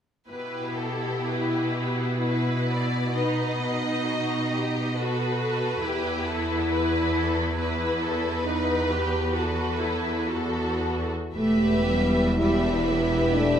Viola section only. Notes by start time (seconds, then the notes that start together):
0.29 E4
3.16 D#4
3.61 D#4
4.97 F#4
5.86 E4
7.58 E4
8.45 D#4
8.91 G4
9.35 F#4
9.82 E4
10.30 F#4
11.35 A3
11.88 G3
12.41 G3
12.90 B3
13.35 A3